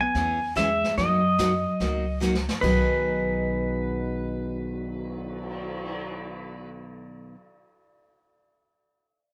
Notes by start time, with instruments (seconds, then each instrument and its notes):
0.01 hollow-body jazz guitar B3, pedal steel guitar G#5
0.15 upright bass E2, steel-string acoustic guitar E3 B3 C#4 G#4, brush sweep, kick, snare
0.56 steel-string acoustic guitar E3 B3 C#4 G#4, hollow-body jazz guitar G#3, pedal steel guitar E5, kick, snare, hi-hat pedal
0.84 snare
0.97 upright bass F#2, steel-string acoustic guitar F#3 A#3 D#4 F#4, pedal steel guitar D#5, brush sweep, kick, snare
1.39 steel-string acoustic guitar F#3 A#3 D#4 F#4, kick, snare, hi-hat pedal
1.80 upright bass C#2, steel-string acoustic guitar F#3 A#3 D#4 F#4, brush sweep, kick, snare
2.20 steel-string acoustic guitar F#3 A#3 D#4 F#4, snare, hi-hat pedal
2.35 snare
2.49 snare
2.61 upright bass B1, steel-string acoustic guitar B2 D#3 F#3 B3 D#4 G#4, pedal steel guitar B4, kick, crash
2.91 cymbal swell